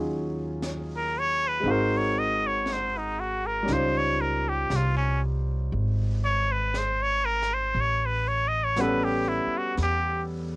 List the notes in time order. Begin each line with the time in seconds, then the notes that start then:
Already playing: D#2 F#3 C#4 D#4 F4 G#4
0.62 brush sweep, snare, hi-hat pedal
0.96 A#4
1.19 C#5
1.48 B4
1.60 G#1 G#3 C4, brush sweep
1.65 D#4 F#4
1.70 A#4 C5
1.97 C#5
2.19 D#5
2.47 C#5
2.66 brush sweep, snare, hi-hat pedal
2.73 C5
2.98 D#4
3.20 F#4
3.46 A#4
3.63 G3 C#4
3.67 C#2 D#4 F4, brush sweep, snare
3.73 C5
3.97 C#5
4.21 A#4
4.49 G4
4.70 C2, brush sweep, snare, hi-hat pedal
4.76 F4
4.97 C#4
5.72 G#1, brush sweep
6.25 C#5
6.52 B4
6.74 brush sweep, snare, hi-hat pedal
6.78 C5
7.03 C#5
7.25 A#4
7.42 snare
7.53 C5
7.75 A1, brush sweep
7.81 C#5
8.06 B4
8.28 C#5
8.48 D#5
8.64 C#5
8.76 G3 B3 C#4 F#5, brush sweep, snare, hi-hat pedal
8.81 A4 B4
9.04 G4
9.28 E4
9.47 muted upright bass stroke
9.58 F#4
9.77 E2, brush sweep, snare
9.83 G4